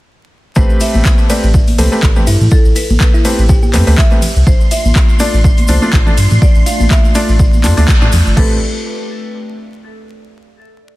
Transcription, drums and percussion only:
0.56 kick, shaker
0.70 shaker
0.80 open hi-hat, ride, high bongo, shaker
0.94 high conga, shaker
1.05 kick, clap, shaker
1.18 shaker
1.30 open hi-hat, ride, shaker
1.43 high bongo, shaker
1.54 kick, shaker
1.67 open hi-hat, high conga, shaker
1.78 open hi-hat, ride, high bongo, low conga, shaker
1.92 shaker
2.02 kick, clap, shaker
2.16 low conga, shaker
2.27 open hi-hat, ride, shaker
2.41 low conga, shaker
2.51 kick, shaker
2.65 shaker
2.75 open hi-hat, ride, high bongo, shaker
2.90 high conga, shaker
3.00 kick, clap, shaker
3.14 shaker
3.25 open hi-hat, ride, shaker
3.38 high bongo, shaker
3.49 kick, shaker
3.63 high conga, shaker
3.74 clap, open hi-hat, ride, high bongo, low conga, shaker
3.87 open hi-hat, shaker
3.98 kick, clap, shaker
4.11 high bongo, shaker
4.22 open hi-hat, ride, low conga, shaker
4.36 shaker
4.47 kick, shaker
4.61 shaker
4.71 open hi-hat, ride, high bongo, shaker
4.85 high conga, shaker
4.95 kick, clap, shaker
5.09 shaker
5.19 open hi-hat, ride, shaker
5.34 high bongo, shaker
5.44 kick, shaker
5.57 open hi-hat, high conga, shaker
5.68 open hi-hat, ride, high bongo, low conga, shaker
5.82 shaker
5.92 kick, clap, shaker
6.07 low conga, shaker
6.18 open hi-hat, ride, shaker
6.30 low conga, shaker
6.42 kick, shaker
6.55 shaker
6.66 open hi-hat, ride, high bongo, shaker
6.80 high conga, shaker
6.91 kick, clap, shaker
7.05 shaker
7.15 open hi-hat, ride, shaker
7.28 high bongo, shaker
7.39 kick, shaker
7.53 high conga, shaker
7.63 clap, open hi-hat, ride, high bongo, low conga, shaker
7.77 open hi-hat, shaker
7.88 kick, clap, shaker
8.02 high bongo, shaker
8.12 open hi-hat, ride, low conga, shaker
8.26 shaker
8.37 kick, crash

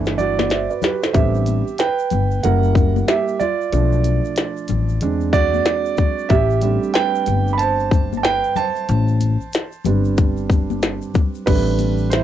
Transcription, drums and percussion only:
0.05 snare, shaker
0.18 low conga, shaker
0.39 snare, high conga, shaker
0.50 snare, closed hi-hat, shaker
0.70 shaker
0.82 snare, low conga, shaker
1.03 snare, shaker
1.14 kick, closed hi-hat, shaker
1.35 shaker
1.46 closed hi-hat, high conga, shaker
1.67 shaker
1.78 snare, closed hi-hat, shaker
1.99 shaker
2.10 closed hi-hat, high conga, low conga, shaker
2.31 shaker
2.44 closed hi-hat, shaker
2.63 shaker
2.75 kick, low conga, shaker
2.96 high conga, shaker
3.08 snare, closed hi-hat, shaker
3.28 shaker
3.40 low conga, shaker
3.61 shaker
3.73 closed hi-hat, shaker
3.92 shaker
4.04 closed hi-hat, high conga, shaker
4.25 shaker
4.36 snare, closed hi-hat, shaker
4.57 shaker
4.68 closed hi-hat, high conga, low conga, shaker
4.89 shaker
5.01 closed hi-hat, shaker
5.20 shaker
5.33 kick, low conga, shaker
5.54 high conga, shaker
5.65 snare, closed hi-hat, shaker
5.85 shaker
5.97 kick, low conga, shaker
6.19 shaker
6.30 kick, closed hi-hat, shaker
6.50 shaker
6.62 closed hi-hat, high conga, shaker
6.63 shaker
6.83 shaker
6.94 snare, closed hi-hat, shaker
7.15 shaker
7.26 closed hi-hat, high conga, low conga, shaker
7.47 shaker
7.59 closed hi-hat, shaker
7.79 shaker
7.91 kick, low conga, shaker
8.13 high conga, shaker
8.24 snare, closed hi-hat, shaker
8.44 shaker
8.56 low conga, shaker
8.76 shaker
8.89 closed hi-hat, shaker
9.08 shaker
9.20 closed hi-hat, high conga, shaker
9.40 shaker
9.52 snare, closed hi-hat, shaker
9.72 shaker
9.85 closed hi-hat, high conga, low conga, shaker
10.05 shaker
10.17 kick, closed hi-hat, shaker
10.37 shaker
10.50 kick, low conga, shaker
10.70 high conga, shaker
10.82 snare, closed hi-hat, shaker
11.02 shaker
11.14 kick, low conga, shaker
11.35 shaker
11.47 kick, closed hi-hat, crash, shaker
11.66 shaker
11.79 closed hi-hat, high conga, shaker
11.98 shaker
12.11 snare, closed hi-hat, shaker

